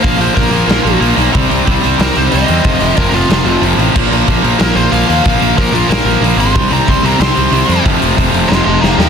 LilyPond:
<<
  \new Staff \with { instrumentName = "Lead electric guitar" } { \time 4/4 \key bes \mixolydian \tempo 4 = 184 f''8 c''8 bes'2 r4 | r2 bes'8 c''8 ees''4~ | ees''4 bes'8 f'8 f'4 r4 | r2 bes'8 c''8 f''4~ |
f''4 bes'8 f'8 bes'4 r8 c'''8~ | c'''8 bes''8 c'''8 bes''8 c'''2 | r2 <ees'' c'''>8 <ees'' c'''>8 <f'' bes''>8 <ees' ees'' g''>8 | }
  \new Staff \with { instrumentName = "Distorted electric guitar" } { \clef bass \time 4/4 \key bes \mixolydian <bes, f bes>8 <bes, f bes>8 <bes, f bes>8 <bes, f bes>8 <bes, f bes>8 <bes, f bes>8 <bes, f bes>8 <bes, f bes>8 | <c g c'>8 <c g c'>8 <c g c'>8 <c g c'>8 <c g c'>8 <c g c'>8 <c g c'>8 <c g c'>8 | <f, c f>8 <f, c f>8 <f, c f>8 <f, c f>8 <f, c f>8 <f, c f>8 <f, c f>8 <f, c f>8 | <bes, f bes>8 <bes, f bes>8 <bes, f bes>8 <bes, f bes>8 <bes, f bes>8 <bes, f bes>8 <bes, f bes>8 <bes, f bes>8 |
<bes, f bes>8 <bes, f bes>8 <bes, f bes>8 <bes, f bes>8 <bes, f bes>8 <bes, f bes>8 <bes, f bes>8 <bes, f bes>8 | <c g c'>8 <c g c'>8 <c g c'>8 <c g c'>8 <c g c'>8 <c g c'>8 <c g c'>8 <c g c'>8 | <f, c f>8 <f, c f>8 <f, c f>8 <f, c f>8 <f, c f>8 <f, c f>8 <f, c f>8 <f, c f>8 | }
  \new Staff \with { instrumentName = "Overdriven electric guitar" } { \clef bass \time 4/4 \key bes \mixolydian <bes, f bes>8 <bes, f bes>8 <bes, f bes>8 <bes, f bes>8 <bes, f bes>8 <bes, f bes>8 <bes, f bes>8 <bes, f bes>8 | <c g c'>8 <c g c'>8 <c g c'>8 <c g c'>8 <c g c'>8 <c g c'>8 <c g c'>8 <c g c'>8 | <f, c f>8 <f, c f>8 <f, c f>8 <f, c f>8 <f, c f>8 <f, c f>8 <f, c f>8 <f, c f>8 | <bes, f bes>8 <bes, f bes>8 <bes, f bes>8 <bes, f bes>8 <f bes>8 <bes, f bes>8 <bes, f bes>8 <bes, f bes>8 |
<bes, f bes>8 <bes, f bes>8 <bes, f bes>8 <bes, f bes>8 <bes, f bes>8 <bes, f bes>8 <bes, f bes>8 <bes, f bes>8 | <c g c'>8 <c g c'>8 <c g c'>8 <c g c'>8 <c g c'>8 <c g c'>8 <c g c'>8 <c g c'>8 | <f, c f>8 <f, c f>8 <f, c f>8 <f, c f>8 <f, c f>8 <f, c f>8 <f, c f>8 <f, c f>8 | }
  \new Staff \with { instrumentName = "Picked electric bass" } { \clef bass \time 4/4 \key bes \mixolydian bes,,8 bes,,8 bes,,8 bes,,8 bes,,8 bes,,8 bes,,8 b,,8 | c,8 c,8 c,8 c,8 c,8 c,8 c,8 e,8 | f,,8 f,,8 f,,8 f,,8 f,,8 f,,8 f,,8 a,,8 | bes,,8 bes,,8 bes,,8 bes,,8 bes,,8 bes,,8 bes,,8 ees,8 |
bes,,8 bes,,8 bes,,8 bes,,8 bes,,8 bes,,8 bes,,8 aes,,8 | c,8 c,8 c,8 c,8 c,8 c,8 c,8 f,8 | f,,8 f,,8 f,,8 f,,8 f,,8 f,,8 f,,8 ees,8 | }
  \new DrumStaff \with { instrumentName = "Drums" } \drummode { \time 4/4 <hho bd>8 hho8 <hho bd>8 hho8 <hho sn>8 hho8 hho8 hho8 | <hho bd>8 hho8 <hho bd>8 hho8 <hho sn>8 hho8 hho8 hho8 | <hho bd>8 hho8 <hho bd>8 hho8 <hho sn>8 hho8 hho8 hho8 | <cymc bd>8 hho8 <hho bd>8 hho8 <hho sn>8 hho8 hho8 hho8 |
<hho bd>8 hho8 <hho bd>8 hho8 <hho sn>8 hho8 hho8 hho8 | <hho bd>8 hho8 <hho bd>8 hho8 <hho sn>8 hho8 hho8 hho8 | <hho bd>8 hho8 <hho bd>8 hho8 sn4 sn8 sn8 | }
>>